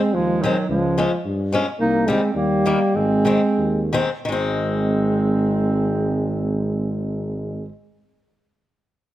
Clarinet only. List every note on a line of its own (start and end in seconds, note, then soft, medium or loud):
0.00 0.16 C4 medium
0.15 0.44 G#3 medium
0.42 0.68 F#3 medium
0.69 1.20 G#3 medium
1.79 2.10 D#4 loud
2.08 2.35 C4 medium
2.36 2.97 A#3 medium
2.96 3.93 C4 medium
4.29 7.69 C4 medium